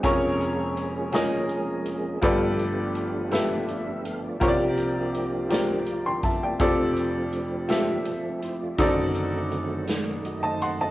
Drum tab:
HH |xxxxxx|xxxxxx|xxxxxx|xxxxxx|
SD |---o--|---o--|---o--|---o--|
BD |o-----|o-----|o----o|o-----|

HH |xxxxxx|
SD |---o--|
BD |o-----|